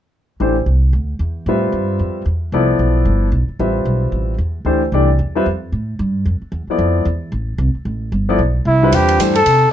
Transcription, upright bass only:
0.40 A1
0.66 C2
0.93 D2
1.19 E2
1.46 A2
1.72 G2
1.99 F2
2.26 E2
2.52 C2
2.79 B1
3.05 G1
3.32 B1
3.49 muted upright bass stroke
3.59 A1
3.85 B1
4.12 A1
4.38 E2
4.65 D2
4.92 C2
5.19 E2
5.46 F2
5.72 A2
5.99 G2
6.26 F2
6.42 muted upright bass stroke
6.52 E2
6.67 muted upright bass stroke
6.78 F2
7.05 E2
7.32 A1
7.58 C2
7.75 muted upright bass stroke
7.85 A1
8.12 G1
8.39 B1
8.65 C2
8.92 E2
9.19 G2
9.46 C3

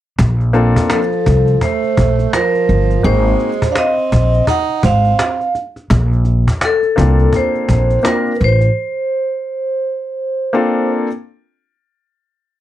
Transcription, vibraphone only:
0.92 A4
1.63 C5
2.34 A#4
3.05 C5
3.72 F5
3.78 D#5
4.50 F#5
4.86 F5
6.65 A4
7.36 C5
8.07 A#4
8.37 B4
8.44 C5

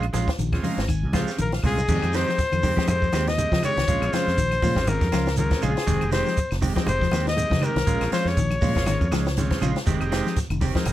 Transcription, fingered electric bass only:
0.14 A#1
0.39 A#1
0.64 muted fingered electric bass stroke
0.78 G#1
1.03 C#2
1.39 A#1
1.63 C2
1.89 F2
2.03 F2
2.53 F2
2.88 F2
3.13 D#2
3.52 F3
3.77 C2
3.88 A#1
4.02 A#1
4.28 F2
4.38 A#1
4.63 A#2
4.76 G#1
5.01 F2
5.13 C#2
5.63 A#1
5.88 F1
6.02 F1
6.52 F1
6.87 F1
7.12 D#2
7.52 F2
7.76 C2
7.87 A#1
8.01 A#1
8.25 F2
8.37 A#1
8.62 A#2
8.76 G#1
9.01 F2
9.12 C#2
9.62 A#1
9.87 F1
10.00 F1
10.50 F1
10.86 F1

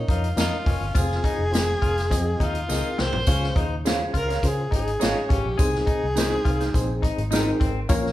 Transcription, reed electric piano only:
Already playing: C#4 F4 A#4 C#5
0.36 C#4 F4 A#4 D#5
0.94 C4 F4 G#4 C5
1.51 C4 F4 G#4 C5
2.10 C4 F4 G#4 D#5
2.68 C4 F4 G#4 A#4
3.28 C#3 C#4 F4 G#4 F5
3.85 C#4 F4 G#4 C5
4.43 C#4 F4 G#4 C5
5.01 C#4 F4 G#4 C#5
5.58 C3 C4 D#4 G#4 C5
6.18 C4 D#4 G#4 C5
6.74 C4 D#4 G#4 C5
7.32 A#3 D#4 G#4 A#4
7.39 C4
7.89 A#2 C#4 F4 A#4 C#5

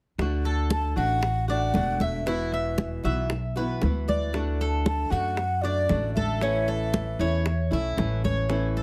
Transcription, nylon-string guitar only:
0.19 D3 A3 D4 F#4
0.96 A3 D4 F#4
1.21 muted nylon-string guitar stroke
1.48 A3 D4 F#4
1.74 D3 A3 D4 F#4
2.26 B2 E3 B3 E4 F#4
3.04 E3 B3 E4 F#4
3.31 muted nylon-string guitar stroke
3.56 E3 B3 E4 F#4
3.83 E3 B3 E4 F#4
4.33 D3 A3 D4 F#4
5.10 A3 D4 F#4
5.37 muted nylon-string guitar stroke
5.63 A3 D4 F#4
5.89 D3 A3 D4 F#4
6.41 E3 A3 C#4 E4
7.20 A3 C#4 E4
7.46 muted nylon-string guitar stroke
7.71 A3 C#4 E4
7.96 E3 A3 C#4 E4
8.49 E3 A3 C#4 E4

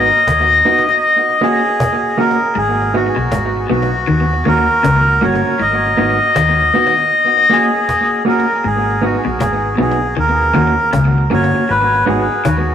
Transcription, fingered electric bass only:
Already playing: G#1
0.28 D#2
2.57 G#1
3.18 B1
3.32 G#1
3.71 B1
4.09 D#2
4.47 D#2
4.85 C#2
5.23 G1
5.61 G#1
5.99 G#1
6.36 D#2
8.66 G#1
9.27 B1
9.41 G#1
9.80 B1
10.18 D#2
10.57 D#2
10.94 C#2
11.32 G1
11.70 G#1
12.09 G#1
12.46 D#2

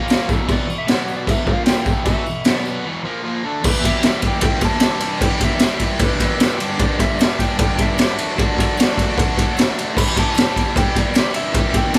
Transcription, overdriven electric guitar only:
Already playing: A#2 F3 A#3
0.28 E2 B2 E3
0.47 E2 B2 E3
0.68 E2 B2
0.87 B2 F#3 B3
1.27 E2 B2 E3
1.45 A#2 F3 A#3
1.85 E2 B2 E3
2.04 E2 B2 E3
2.25 E2 B2
2.46 B2 F#3 B3
2.85 E2 B2 E3
3.04 A#2 F3 A#3
3.24 A#2 F3 A#3
3.44 D3 A3 D4
3.62 E2 B2 E3 G3
3.66 E4 G4
3.84 E3 G3 E4 G4
4.03 E3 G3 E4
4.07 G4
4.24 E3 G3 E4 G4
4.42 E2 B2 E3 G3 E4 G4
4.63 E3 G3 E4 G4
4.81 E3 G3 E4
4.86 G4
5.22 E2 B2 E3 G3 E4
5.26 G4
5.43 E3 G3 E4 G4
5.62 E3 G3 E4
5.67 G4
5.82 G3 E4 G4
5.87 E3
6.00 E2 B2 E3 G3 E4 G4
6.20 E3 G3 E4 G4
6.37 E3 G3 E4
6.42 G4
6.57 D3 G3 B3 D4 G4
6.62 G2
6.77 G2 D3 G3 B3 D4
6.82 G4
6.98 B3 D4 G4
7.02 G3
7.18 G3 B3 D4
7.22 G4
7.38 G3 B3 D4 G4
7.57 G2 D3 G3 B3 D4
7.62 G4
7.76 B3 D4 G4
7.81 G3
7.96 G3 B3 D4
8.01 G4
8.17 A3 D4 F#4
8.21 F#3
8.34 F#3 A3 D4
8.39 F#4
8.55 D4 F#4
8.60 A3
8.76 F#3 A3 D4 F#4
8.96 D4 F#4
9.00 A3
9.14 F#3 A3 D4
9.19 F#4
9.35 D4 F#4
9.40 A3
9.53 F#3 A3 D4
9.58 F#4
9.94 E2 B2 E3 G3
9.98 E4 G4
10.15 E3 G3 E4 G4
10.33 E3 G3 E4
10.37 G4
10.53 G3 E4 G4
10.58 E3
10.72 E2 B2 E3 G3 E4 G4
10.92 G3 E4 G4
10.97 E3
11.13 E3 G3 E4 G4
11.52 E2 B2 E3 G3 E4
11.56 G4
11.71 G3 E4 G4
11.76 E3
11.91 E3 G3 E4

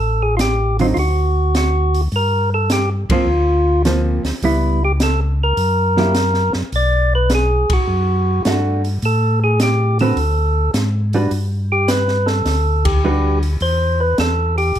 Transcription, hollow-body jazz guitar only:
0.80 D3 F#3 C4 D#4
3.11 F3 A#3 C4
3.86 F3 A#3 C4
4.44 G3 B3 E4
5.98 F#3 A#3 E4 G4
8.47 A3 D4 F#4
10.01 D3 C4 F#4 B4
11.14 G3 D4 F#4 B4
13.05 G3 D4 F#4 B4

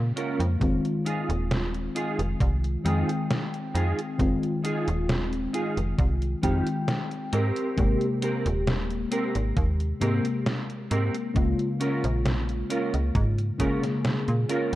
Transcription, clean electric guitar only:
0.16 C#4 F4 A#4
1.05 D#4 F4 G#4
1.95 D#4 F4 G#4
2.85 D#4 F4 G#4
3.74 D#4 F4 G#4
4.64 D#4 F4 G#4
5.53 D#4 F4 G#4
6.43 D#4 F4 G4
7.32 C4 G4 A#4
8.22 C4 G4 A#4
9.11 C4 G4 A#4
10.01 C4 G4 A#4
10.91 C4 G4 A#4
11.80 C#4 F4 A#4
12.70 C#4 F4 A#4
13.59 C#4 F4 A#4
14.49 C#4 F4 A#4

